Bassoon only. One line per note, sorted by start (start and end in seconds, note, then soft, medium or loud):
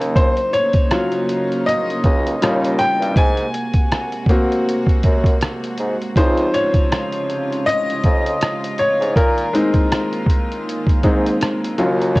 0.00 0.43 D#2 loud
2.04 2.36 C#2 medium
2.42 2.91 D#2 loud
3.00 3.14 G2 medium
3.17 3.48 G#2 loud
5.04 5.36 F#2 medium
5.79 5.96 G#2 medium
6.16 6.48 C#2 loud
8.05 8.36 F2 medium
9.00 9.14 G#2 medium
9.16 9.48 A#2 loud
11.04 11.36 G#2 medium
11.79 12.20 D#2 loud